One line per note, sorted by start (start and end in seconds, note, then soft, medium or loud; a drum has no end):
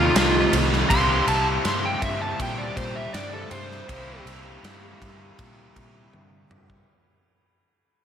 0.00 0.88 F2 medium
0.00 0.88 C3 medium
0.00 0.89 D#3 loud
0.00 0.90 A3 loud
0.00 0.90 D#4 loud
0.00 0.16 F4 medium
0.16 0.45 C2 loud
0.16 0.53 F4 loud
0.16 snare loud
0.16 ride medium
0.53 0.83 C2 medium
0.53 ride medium
0.73 snare soft
0.89 1.20 C2 medium
0.89 3.88 C3 medium
0.89 3.89 G3 medium
0.89 3.91 A#3 medium
0.89 3.92 E4 loud
0.89 1.27 C6 loud
0.89 kick loud
0.89 ride medium
1.28 1.57 C2 medium
1.28 1.46 A5 medium
1.28 ride medium
1.65 1.95 G2 medium
1.65 1.84 C6 medium
1.65 snare loud
1.65 ride loud
1.85 2.03 G5 medium
2.02 2.32 G2 medium
2.02 2.21 E5 medium
2.02 kick medium
2.02 ride medium
2.21 2.40 A5 medium
2.40 2.69 A#2 loud
2.40 2.59 G5 medium
2.40 kick loud
2.40 ride loud
2.58 2.77 D5 medium
2.76 3.07 A#2 medium
2.76 2.95 C5 loud
2.76 kick medium
2.76 ride medium
2.96 3.14 E5 medium
3.13 3.44 G2 medium
3.13 3.32 D5 medium
3.13 snare loud
3.13 ride loud
3.33 3.52 A4 loud
3.51 3.81 G2 medium
3.51 4.24 C5 medium
3.51 ride medium
3.71 snare soft
3.88 4.19 C2 loud
3.88 6.85 C3 medium
3.88 6.86 G3 loud
3.88 6.87 A#3 loud
3.88 kick loud
3.88 ride loud
3.92 6.87 E4 loud
4.26 4.56 C2 medium
4.26 ride medium
4.63 4.93 G2 medium
4.63 snare loud
4.63 ride medium
5.01 5.31 G2 medium
5.01 kick medium
5.01 ride medium
5.39 5.68 A#2 medium
5.39 kick loud
5.39 ride medium
5.76 6.05 A#2 medium
5.76 kick medium
5.76 ride medium
6.13 6.43 G2 loud
6.13 high tom medium
6.50 6.80 G2 medium
6.50 mid tom loud
6.70 kick medium